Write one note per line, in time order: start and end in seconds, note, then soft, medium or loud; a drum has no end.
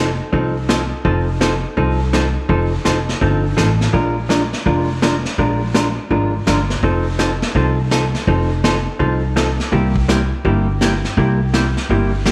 0.00 0.18 F1 medium
0.33 0.91 C2 medium
0.33 0.55 F3 medium
0.33 0.55 C4 medium
0.33 0.55 D#4 medium
0.33 0.55 A4 medium
0.33 brush sweep medium
0.33 kick soft
0.69 0.81 F3 medium
0.69 0.81 C4 medium
0.69 0.81 D#4 medium
0.69 0.81 A4 medium
0.69 snare medium
0.69 hi-hat pedal medium
1.05 1.63 F1 medium
1.05 1.27 F3 medium
1.05 1.27 C4 medium
1.05 1.27 D#4 medium
1.05 1.27 A4 medium
1.05 brush sweep medium
1.05 kick soft
1.41 1.53 F3 medium
1.41 1.53 C4 medium
1.41 1.53 D#4 medium
1.41 1.53 A4 medium
1.41 snare medium
1.41 hi-hat pedal medium
1.77 2.35 C2 medium
1.77 1.99 F3 medium
1.77 1.99 C4 medium
1.77 2.00 D#4 medium
1.77 2.00 A4 medium
1.77 brush sweep soft
1.77 kick soft
2.13 2.25 F3 medium
2.13 2.25 C4 medium
2.13 2.25 D#4 medium
2.13 2.25 A4 medium
2.13 snare medium
2.13 hi-hat pedal medium
2.49 2.78 F1 medium
2.49 2.71 F3 medium
2.49 2.72 C4 medium
2.49 2.72 D#4 medium
2.49 2.72 A4 medium
2.49 brush sweep soft
2.49 kick soft
2.85 3.16 F1 medium
2.85 2.97 F3 medium
2.85 2.97 C4 medium
2.85 2.97 D#4 medium
2.85 2.97 A4 medium
2.85 snare medium
2.85 hi-hat pedal medium
3.09 snare soft
3.21 3.52 G1 medium
3.21 3.44 F3 medium
3.21 3.44 C4 medium
3.21 3.44 D#4 medium
3.21 3.44 A4 medium
3.21 brush sweep soft
3.21 kick soft
3.57 3.88 A1 medium
3.57 3.69 F3 medium
3.57 3.69 C4 medium
3.57 3.69 D#4 medium
3.57 3.69 A4 medium
3.57 snare medium
3.57 hi-hat pedal medium
3.81 snare soft
3.93 4.52 A#1 medium
3.93 4.16 F3 medium
3.93 4.16 G#3 soft
3.93 4.16 D4 medium
3.93 4.16 F4 medium
3.93 4.16 A#4 medium
3.93 brush sweep soft
3.93 kick soft
4.29 4.41 F3 medium
4.29 4.41 G#3 medium
4.29 4.42 D4 medium
4.29 4.42 F4 medium
4.29 4.42 A#4 medium
4.29 snare medium
4.29 hi-hat pedal medium
4.53 snare soft
4.66 5.24 F1 medium
4.66 4.88 F3 medium
4.66 4.88 G#3 medium
4.66 4.88 D4 medium
4.66 4.88 F4 medium
4.66 4.89 A#4 medium
4.66 brush sweep medium
4.66 kick soft
5.02 5.14 F3 medium
5.02 5.14 G#3 medium
5.02 5.14 D4 medium
5.02 5.15 F4 medium
5.02 5.15 A#4 medium
5.02 snare medium
5.02 hi-hat pedal medium
5.25 snare soft
5.38 5.96 A#1 medium
5.38 5.61 F3 medium
5.38 5.61 G#3 medium
5.38 5.61 D4 medium
5.38 5.61 F4 medium
5.38 5.61 A#4 medium
5.38 brush sweep medium
5.38 kick soft
5.74 5.86 F3 medium
5.74 5.86 G#3 medium
5.74 5.86 D4 medium
5.74 5.87 F4 medium
5.74 5.87 A#4 medium
5.74 snare medium
5.74 hi-hat pedal medium
6.10 6.41 G#1 medium
6.10 6.33 F3 medium
6.10 6.33 G#3 medium
6.10 6.33 D4 medium
6.10 6.33 F4 medium
6.10 6.33 A#4 medium
6.10 brush sweep soft
6.10 kick soft
6.47 6.78 G1 medium
6.47 6.59 F3 medium
6.47 6.59 G#3 medium
6.47 6.59 D4 medium
6.47 6.59 F4 medium
6.47 6.59 A#4 medium
6.47 snare medium
6.47 hi-hat pedal medium
6.70 snare soft
6.83 7.41 F1 medium
6.83 7.05 F3 medium
6.83 7.05 C4 medium
6.83 7.05 D#4 medium
6.83 7.06 A4 medium
6.83 brush sweep medium
6.83 kick soft
7.19 7.31 F3 medium
7.19 7.31 C4 medium
7.19 7.31 D#4 medium
7.19 7.31 A4 medium
7.19 snare medium
7.19 hi-hat pedal medium
7.42 snare soft
7.55 8.13 C2 medium
7.55 7.77 F3 medium
7.55 7.78 C4 medium
7.55 7.78 D#4 medium
7.55 7.78 A4 medium
7.55 brush sweep soft
7.55 kick soft
7.91 8.03 F3 medium
7.91 8.03 C4 medium
7.91 8.03 D#4 medium
7.91 8.04 A4 medium
7.91 snare medium
7.91 hi-hat pedal medium
8.15 snare soft
8.27 8.85 F1 medium
8.27 8.50 F3 soft
8.27 8.50 C4 medium
8.27 8.50 D#4 medium
8.27 8.50 A4 medium
8.27 brush sweep soft
8.27 kick soft
8.64 8.76 F3 medium
8.64 8.76 C4 medium
8.64 8.76 D#4 medium
8.64 8.76 A4 medium
8.64 snare medium
8.64 hi-hat pedal medium
8.99 9.58 C2 medium
8.99 9.22 F3 medium
8.99 9.22 C4 medium
8.99 9.22 D#4 medium
8.99 9.22 A4 medium
8.99 brush sweep medium
8.99 kick soft
9.36 9.48 F3 medium
9.36 9.48 C4 medium
9.36 9.48 D#4 medium
9.36 9.48 A4 medium
9.36 snare medium
9.36 hi-hat pedal soft
9.60 snare soft
9.72 10.30 C2 medium
9.72 9.94 C3 medium
9.72 9.94 G3 medium
9.72 9.94 A#3 medium
9.72 9.95 E4 medium
9.72 9.95 G4 medium
9.72 brush sweep medium
9.72 kick soft
9.96 kick medium
10.08 10.20 C3 medium
10.08 10.20 G3 medium
10.08 10.20 A#3 medium
10.08 10.21 E4 medium
10.08 10.21 G4 medium
10.08 snare medium
10.08 hi-hat pedal medium
10.45 11.03 G1 medium
10.45 10.67 C3 medium
10.45 10.67 G3 medium
10.45 10.67 A#3 medium
10.45 10.67 E4 medium
10.45 10.67 G4 medium
10.45 brush sweep soft
10.45 kick soft
10.81 10.93 C3 medium
10.81 10.93 G3 medium
10.81 10.93 A#3 medium
10.81 10.93 E4 medium
10.81 10.93 G4 medium
10.81 snare medium
10.81 hi-hat pedal medium
11.05 snare soft
11.17 11.75 C2 medium
11.17 11.39 C3 medium
11.17 11.40 G3 medium
11.17 11.40 A#3 medium
11.17 11.40 E4 medium
11.17 11.40 G4 medium
11.17 brush sweep medium
11.17 kick soft
11.54 11.65 C3 medium
11.54 11.65 G3 medium
11.54 11.65 A#3 medium
11.54 11.66 E4 medium
11.54 11.66 G4 medium
11.54 snare medium
11.54 hi-hat pedal medium
11.77 snare soft
11.89 12.32 G1 medium
11.89 12.12 C3 medium
11.89 12.12 G3 medium
11.89 12.12 A#3 medium
11.89 12.12 E4 medium
11.89 12.12 G4 medium
11.89 brush sweep soft
11.89 kick soft
12.26 12.32 C3 medium
12.26 12.32 G3 medium
12.26 12.32 A#3 medium
12.26 12.32 E4 medium
12.26 12.32 G4 medium
12.26 snare medium
12.26 hi-hat pedal medium